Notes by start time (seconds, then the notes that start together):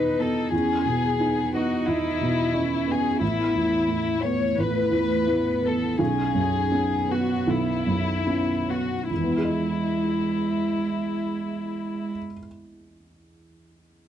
Already playing: E2 B2 B3 D#4 B4 D#5
0.18 B3 A4
0.52 E2 C#4 G#4
0.85 B2 B3
1.20 B3 D#4
1.54 B3 D#4 F#4
1.87 E2 E4
2.21 B2
2.54 C#4 D#5
2.87 B3 G#4
3.20 A1 B3 E4
3.55 E2
3.87 A3 E4
4.23 A3 B3 C#5
4.58 A1 B4
4.91 E2
5.27 B3 E4
5.62 B3 A4
5.99 B1 C#4 G#4
6.34 F#2
6.72 B3 C#4
7.09 B3 F#4
7.47 B1 E4
7.86 F#2
8.27 B3 C#4
8.68 B3 F#4
9.08 E2 G#3 E4
9.17 E3
9.24 B3
9.31 E4
9.37 G#4
9.44 D#5